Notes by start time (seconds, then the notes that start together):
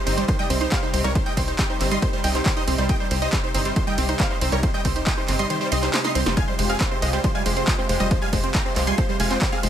0.06 G1 C3 G3 C4 D#4 G4 C5, open hi-hat, ride
0.17 G3 C5, closed hi-hat
0.28 C3 D#3 G3 D#4 G4 C5, kick, closed hi-hat, ride
0.39 C3 G3 D#4 G4 D#5 G5
0.50 C2 C4 C5, open hi-hat, ride
0.61 C3 G3 D#4 G4 C5, closed hi-hat
0.72 G4 C5 F5, kick, clap, closed hi-hat, ride
0.83 C3 G3 D#4 G4 C5
0.93 C2 C4 C5, open hi-hat, ride
1.04 C2 C3 G3 D#4 G4 A#4 C#5, closed hi-hat
1.15 C3 D#3 G3 D#4 G4 C5, kick, closed hi-hat, ride
1.26 G3 D#5 G5
1.37 C2 C3 G3 C4 D#4 G4 C5, kick, open hi-hat, ride
1.48 D#4 C5, closed hi-hat
1.59 C3 G3 D#4 G4 D#5 G5, kick, clap, closed hi-hat, ride
1.70 D#4 C5
1.80 G1 C3 G3 C4 D#4 G4 C5, clap, open hi-hat, ride
1.91 G3 D#5 C6, closed hi-hat
2.02 C3 D#3 G3 D#4 G4 C5, kick, closed hi-hat, ride
2.13 C3 G3 D#4 G4 C5
2.24 C2 C4 D#5 G5, open hi-hat, ride
2.35 C3 G3 D#4 G4 C5, clap, closed hi-hat
2.46 G4 C5, kick, clap, open hi-hat, ride
2.57 C3 G3 D#4 G4 C5 D#5
2.67 C2 C4 C5, open hi-hat, ride
2.78 C2 C3 G3 D#4 G4 C5, closed hi-hat
2.89 C3 D#3 G3 D#4 G4 D#5 G5, kick, closed hi-hat, ride
3.00 G3 C5
3.11 C2 C3 G3 C4 D#4 G4 C5, open hi-hat, ride
3.22 D#4 C5 D#5, closed hi-hat
3.33 C3 G3 D#4 G4 C5, kick, clap, closed hi-hat, ride
3.44 D#4 C5
3.54 G1 C3 G3 C4 D#4 G4 C5, open hi-hat, ride
3.65 G3 C5, closed hi-hat
3.76 C3 D#3 G3 D#4 G4 C5, kick, closed hi-hat, ride
3.87 C3 G3 D#4 G4 D#5 G5
3.98 C2 C4 C5, open hi-hat, ride
4.09 C3 G3 D#4 G4 C5, closed hi-hat
4.20 G4 C5 F5, kick, clap, closed hi-hat, ride
4.30 C3 G3 D#4 G4 C5
4.41 C2 C4 C5, open hi-hat, ride
4.52 C2 C3 G3 D#4 G4 A#4 C#5, closed hi-hat
4.63 C3 D#3 G3 D#4 G4 C5, kick, closed hi-hat, ride
4.74 G3 D#5 G5
4.85 C2 C3 G3 C4 D#4 G4 C5, kick, open hi-hat, ride
4.96 D#4 C5, closed hi-hat
5.07 C3 G3 D#4 G4 D#5 G5, kick, clap, closed hi-hat, ride
5.17 D#4 C5
5.28 G1 C3 G3 C4 D#4 G4 C5, clap, open hi-hat, ride
5.39 G3 D#5 C6, closed hi-hat
5.50 C3 D#3 G3 D#4 G4 C5, closed hi-hat, ride
5.61 C3 G3 D#4 G4 C5
5.72 C2 C4 D#5 C6, open hi-hat, ride
5.82 C3 G3 D#4 G4 C5, clap, closed hi-hat
5.93 G4 C5, snare, clap, open hi-hat, ride
6.04 C3 G3 D#4 G4 D#5 C6, snare
6.15 C2 C4 C5, open hi-hat, ride
6.26 F1 C3 G3 D#4 G4 C5, snare, closed hi-hat
6.37 C3 F3 G#3 F4 G4 F5 G#5, kick, closed hi-hat, ride
6.48 G3 C5
6.58 F1 C3 G#3 F4 G4 C5, open hi-hat, ride
6.69 C4 G#4 F5, closed hi-hat
6.80 C3 G#3 F4 G4 C5, kick, clap, closed hi-hat, ride
6.91 C4 C5
7.02 C2 C3 G#3 F4 G4 C5 D#5, open hi-hat, ride
7.13 G3 C5, closed hi-hat
7.24 C3 F3 G#3 F4 G4 C5, kick, closed hi-hat, ride
7.35 C3 G3 G#3 F4 G4 F5 G#5
7.46 F1 G#3 C5, open hi-hat, ride
7.57 C3 G#3 C4 F4 G4 C5, closed hi-hat
7.67 F4 D#5 G5, kick, clap, closed hi-hat, ride
7.78 C3 G#3 C4 F4 G4 C5
7.89 F1 G#3 C5, open hi-hat, ride
8.00 F1 C3 G3 G#3 F4 G4 C5 D#5, closed hi-hat
8.11 C3 F3 G#3 F4 G4 C5, kick, closed hi-hat, ride
8.22 G3 F5 G#5
8.33 F1 C3 G#3 F4 G4 C5, kick, open hi-hat, ride
8.44 C4 C5, closed hi-hat
8.55 C3 G#3 F4 G4 G5 A#5, kick, clap, closed hi-hat, ride
8.65 C4 C5
8.76 C2 C3 G#3 F4 G4 C5, clap, open hi-hat, ride
8.87 G3 G#5 C6, closed hi-hat
8.98 C3 F3 G#3 F4 G4 C5, kick, closed hi-hat, ride
9.09 C3 G3 G#3 F4 G4 C5
9.20 F1 G#3 F5 G#5, open hi-hat, ride
9.31 C3 G#3 C4 F4 G4 C5, clap, closed hi-hat
9.42 F4 C5, kick, clap, open hi-hat, ride
9.52 C3 G#3 C4 F4 G4 G#4 F5
9.63 F1 G#3 C5, open hi-hat, ride